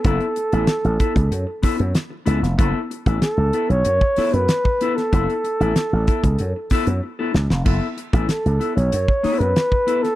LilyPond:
<<
  \new Staff \with { instrumentName = "Flugelhorn" } { \time 4/4 \key fis \minor \tempo 4 = 95 a'2~ a'8. r4 r16 | r4 a'8. cis''4 b'4 a'16~ | a'2~ a'8. r4 r16 | r4 a'8. cis''4 b'4 a'16 | }
  \new Staff \with { instrumentName = "Clean electric guitar" } { \time 4/4 \key fis \minor <b e' a'>16 r8 <b e' a'>16 r8 <b e' a'>16 r8. <b e' a'>16 r8. <b e' a'>16 r16 | <b e' a'>16 r8 <b e' a'>16 r8 <b e' a'>16 r8. <b e' a'>16 r8. <b e' a'>16 r16 | <b e' a'>16 r8 <b e' a'>16 r8 <b e' a'>16 r8. <b e' a'>16 r8 <b e' a'>16 r8 | <b e' a'>16 r8 <b e' a'>16 r8 <b e' a'>16 r8. <b e' a'>16 r8. <b e' a'>16 r16 | }
  \new Staff \with { instrumentName = "Slap bass" } { \clef bass \time 4/4 \key fis \minor fis,,16 r8 a,,16 r16 a,,16 r16 cis,16 fis,16 r8 fis,16 r8 cis,16 eis,,16 | fis,,16 r8 a,,16 r16 cis,16 r16 b,,16 fis,16 r8 fis,16 r4 | fis,,16 r8 a,,16 r16 a,,16 r16 cis,16 fis,16 r8 fis,16 r8 cis,16 eis,,16 | fis,,16 r8 a,,16 r16 cis,16 r16 b,,16 fis,16 r8 fis,16 r4 | }
  \new DrumStaff \with { instrumentName = "Drums" } \drummode { \time 4/4 <hh bd>16 hh16 hh16 hh16 <hh sn>16 hh16 <hh bd>16 <hh bd>16 hh8 <hho bd sn>16 hh16 <hh sn>8 hh16 <hh sn>16 | <hh bd>8 hh16 <hh bd>16 <hh sn>8 hh16 hh16 hh16 bd16 <hho sn>16 hh16 <hh sn>16 bd16 hh16 <hh sn>16 | <hh bd>16 hh16 hh16 hh16 <hh sn>8 <hh bd>16 <hh bd>16 hh8 <hho bd sn>16 hh16 r8 sn16 sn16 | <cymc bd>8 hh16 <hh bd>16 <hh sn>16 hh16 hh16 hh16 hh16 bd16 <hho sn>16 hh16 <hh sn>16 bd16 hh16 <hh sn>16 | }
>>